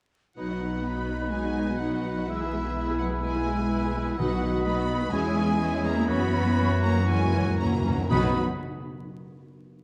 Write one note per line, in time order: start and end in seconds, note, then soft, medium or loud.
0.37 4.15 B1 soft
0.37 0.82 F#3 soft
0.37 0.49 F#3 soft
0.37 4.14 B3 soft
0.37 2.25 D#4 soft
0.37 0.49 D#4 soft
0.37 2.25 D#4 soft
0.37 0.49 B4 soft
0.37 4.15 B4 soft
0.37 0.83 F#5 soft
0.37 2.26 F#6 soft
0.49 0.62 B3 soft
0.49 0.62 F#4 soft
0.49 0.62 D#5 soft
0.61 0.74 F#3 soft
0.61 0.74 D#4 soft
0.61 0.74 B4 soft
0.73 0.86 B3 soft
0.73 0.86 F#4 soft
0.73 0.86 D#5 soft
0.85 0.97 F#3 soft
0.85 1.32 B3 soft
0.85 0.97 D#4 soft
0.85 0.97 B4 soft
0.85 1.33 B5 medium
0.97 1.09 B3 soft
0.97 1.09 F#4 soft
0.97 1.10 F#4 soft
0.97 1.10 D#5 soft
1.10 1.22 F#3 soft
1.10 1.22 D#4 soft
1.10 1.22 B4 soft
1.22 1.34 B3 soft
1.22 1.34 F#4 soft
1.22 1.34 D#5 soft
1.33 1.45 F#3 soft
1.33 1.81 G#3 medium
1.33 1.44 D#4 soft
1.33 1.45 D#4 soft
1.33 1.44 B4 soft
1.33 1.80 G#5 medium
1.44 1.57 B3 soft
1.44 1.57 F#4 soft
1.44 1.58 F#4 soft
1.44 1.57 D#5 soft
1.56 1.69 F#3 soft
1.56 1.69 D#4 soft
1.56 1.69 B4 soft
1.68 1.81 B3 soft
1.68 1.81 F#4 soft
1.68 1.81 D#5 soft
1.80 1.92 F#3 soft
1.80 2.29 F#3 soft
1.80 1.92 D#4 soft
1.80 1.92 B4 soft
1.80 2.29 F#5 medium
1.92 2.05 B3 soft
1.92 2.05 F#4 soft
1.92 2.05 D#5 soft
2.04 2.17 F#3 soft
2.04 2.17 D#4 soft
2.04 2.17 B4 soft
2.16 2.29 B3 soft
2.16 2.29 F#4 soft
2.16 2.29 D#5 soft
2.28 2.98 E3 medium
2.28 2.40 G#3 soft
2.28 4.19 E4 soft
2.28 2.40 E4 soft
2.28 4.15 E4 soft
2.28 2.41 G#4 soft
2.28 2.41 B4 soft
2.28 2.99 E5 medium
2.28 4.21 E6 soft
2.41 2.53 B3 soft
2.41 2.54 E4 soft
2.41 2.53 G#4 soft
2.41 2.52 G#4 soft
2.53 2.65 G#3 soft
2.53 2.65 E4 soft
2.53 2.65 G#4 soft
2.53 2.65 B4 soft
2.65 2.77 B3 soft
2.65 2.77 E4 soft
2.65 2.77 G#4 soft
2.65 2.76 G#4 soft
2.77 2.88 G#3 soft
2.77 2.88 E4 soft
2.77 2.88 G#4 soft
2.77 2.88 B4 soft
2.88 3.00 B3 soft
2.88 3.01 E4 soft
2.88 3.00 G#4 soft
2.98 3.24 F#3 medium
2.98 3.12 G#3 soft
2.98 3.12 E4 soft
2.98 3.11 G#4 soft
2.98 3.13 B4 soft
2.98 3.06 F#5 medium
3.11 3.24 B3 soft
3.11 3.24 E4 soft
3.11 3.24 G#4 soft
3.11 3.23 G#4 soft
3.22 3.34 G#3 soft
3.22 4.19 G#3 medium
3.22 3.34 E4 soft
3.22 3.35 G#4 soft
3.22 3.35 B4 soft
3.22 4.16 G#5 medium
3.35 3.47 B3 soft
3.35 3.48 E4 soft
3.35 3.47 G#4 soft
3.35 3.46 G#4 soft
3.46 3.59 G#3 soft
3.46 3.59 E4 soft
3.46 3.58 G#4 soft
3.46 3.60 B4 soft
3.59 3.71 B3 soft
3.59 3.72 E4 soft
3.59 3.71 G#4 soft
3.59 3.70 G#4 soft
3.70 3.82 G#3 soft
3.70 3.82 E4 soft
3.70 3.82 G#4 soft
3.70 3.82 B4 soft
3.82 3.95 B3 soft
3.82 3.95 E4 soft
3.82 3.95 G#4 soft
3.82 3.93 G#4 soft
3.94 4.07 G#3 soft
3.94 4.07 E4 soft
3.94 4.05 G#4 soft
3.94 4.07 B4 soft
4.06 4.18 B3 soft
4.06 4.18 E4 soft
4.06 4.19 G#4 soft
4.18 5.11 B1 medium
4.18 4.86 B2 medium
4.18 4.30 F#3 medium
4.18 4.65 F#3 medium
4.18 5.11 B3 medium
4.18 4.30 D#4 soft
4.18 5.12 D#4 medium
4.18 5.14 F#4 medium
4.18 4.29 B4 medium
4.18 5.11 B4 medium
4.18 4.30 D#5 medium
4.18 4.65 F#5 medium
4.18 6.12 D#6 soft
4.30 4.42 B3 soft
4.30 4.42 F#4 soft
4.30 4.43 F#4 soft
4.30 4.43 F#5 soft
4.42 4.54 F#3 soft
4.42 4.54 D#4 soft
4.42 4.54 B4 soft
4.42 4.54 D#5 soft
4.54 4.66 B3 soft
4.54 4.66 F#4 soft
4.54 4.66 F#5 soft
4.65 4.77 F#3 soft
4.65 5.13 B3 medium
4.65 4.77 D#4 soft
4.65 4.76 B4 medium
4.65 4.76 D#5 soft
4.65 5.11 B5 medium
4.77 4.89 B3 soft
4.77 4.89 F#4 soft
4.77 4.89 F#5 soft
4.88 5.01 F#3 soft
4.88 5.01 D#4 soft
4.88 5.00 B4 soft
4.88 5.00 D#5 soft
5.01 5.13 B3 soft
5.01 5.13 F#4 medium
5.01 5.13 F#4 soft
5.01 5.13 F#5 soft
5.12 6.10 E2 medium
5.12 5.24 E3 medium
5.12 5.83 G#3 medium
5.12 6.10 G#3 medium
5.12 7.81 C#4 medium
5.12 5.24 C#4 medium
5.12 7.85 E4 medium
5.12 6.10 G#4 medium
5.12 5.24 G#4 medium
5.12 5.24 E5 medium
5.12 5.85 G#5 medium
5.25 5.37 G#3 medium
5.25 5.37 E4 medium
5.25 5.37 C#5 soft
5.36 5.48 E3 medium
5.36 5.48 C#4 medium
5.36 5.49 G#4 soft
5.36 5.49 E5 soft
5.49 5.61 G#3 medium
5.49 5.61 E4 medium
5.49 5.61 C#5 soft
5.61 5.72 E3 soft
5.61 5.72 C#4 medium
5.61 5.73 G#4 medium
5.61 5.72 E5 medium
5.73 5.85 G#3 medium
5.73 5.85 E4 medium
5.73 5.86 E4 medium
5.73 5.86 C#5 medium
5.85 5.97 E3 medium
5.85 6.10 A#3 medium
5.85 5.97 C#4 soft
5.85 5.98 G#4 medium
5.85 5.98 E5 medium
5.85 6.10 A#5 medium
5.97 6.09 G#3 soft
5.97 6.09 E4 soft
5.97 6.10 E4 soft
5.97 6.10 C#5 soft
6.09 7.90 F#2 medium
6.09 6.21 E3 medium
6.09 7.82 E3 medium
6.09 6.83 B3 medium
6.09 6.21 C#4 medium
6.09 7.85 F#4 medium
6.09 6.22 F#4 medium
6.09 6.22 C#5 medium
6.09 6.82 B5 medium
6.09 7.86 C#6 medium
6.21 6.34 F#3 medium
6.21 6.33 B3 medium
6.21 6.34 E4 soft
6.21 6.35 B4 soft
6.34 6.46 E3 medium
6.34 6.46 C#4 medium
6.34 6.46 F#4 medium
6.34 6.47 C#5 soft
6.46 6.59 F#3 medium
6.46 6.59 B3 medium
6.46 6.59 E4 medium
6.46 6.59 B4 medium
6.58 6.70 E3 medium
6.58 6.70 C#4 medium
6.58 6.71 F#4 medium
6.58 6.71 C#5 medium
6.71 6.84 F#3 soft
6.71 6.84 B3 medium
6.71 6.84 E4 medium
6.71 6.84 B4 soft
6.83 6.96 E3 medium
6.83 7.08 A#3 medium
6.83 6.96 C#4 medium
6.83 6.96 F#4 medium
6.83 6.96 C#5 medium
6.83 7.08 A#5 medium
6.96 7.08 F#3 medium
6.96 7.08 B3 medium
6.96 7.09 E4 medium
6.96 7.08 B4 soft
7.08 7.15 F#2 soft
7.08 7.20 E3 medium
7.08 7.58 G#3 medium
7.08 7.20 C#4 medium
7.08 7.21 F#4 medium
7.08 7.21 C#5 medium
7.08 7.59 G#5 loud
7.21 7.34 F#3 medium
7.21 7.34 A#3 medium
7.21 7.34 E4 medium
7.21 7.35 A#4 medium
7.26 7.31 F#2 soft
7.32 7.39 F#2 soft
7.32 7.46 E3 medium
7.32 7.47 C#4 medium
7.32 7.47 F#4 soft
7.32 7.47 C#5 medium
7.41 7.47 F#2 soft
7.46 7.55 F#2 soft
7.46 7.59 F#3 medium
7.46 7.59 A#3 medium
7.46 7.60 E4 medium
7.46 7.60 A#4 medium
7.56 7.64 F#2 soft
7.56 7.71 E3 medium
7.56 8.10 A#3 medium
7.56 7.71 C#4 medium
7.56 8.10 A#5 medium
7.61 7.72 F#2 medium
7.61 7.72 F#4 medium
7.61 7.72 C#5 medium
7.72 7.80 F#2 medium
7.72 7.85 F#3 medium
7.72 7.85 A#3 medium
7.72 7.86 E4 medium
7.72 7.86 A#4 medium
7.81 7.88 F#2 medium
7.81 7.98 C#4 medium
7.86 7.96 F#2 medium
7.86 7.98 E3 medium
7.86 8.00 F#4 medium
7.86 8.00 C#5 medium
7.98 8.05 F#2 medium
7.98 8.08 F#3 soft
7.98 8.11 A#3 soft
7.98 8.12 E4 soft
7.98 8.12 A#4 soft
8.10 8.39 B1 medium
8.10 8.35 B2 medium
8.10 8.39 F#3 medium
8.10 8.32 F#3 medium
8.10 8.39 B3 medium
8.10 8.39 D#4 medium
8.10 8.32 D#4 medium
8.10 8.32 F#4 medium
8.10 8.40 F#4 medium
8.10 8.32 B4 medium
8.10 8.40 B4 medium
8.10 8.39 B5 medium
8.10 8.39 D#6 medium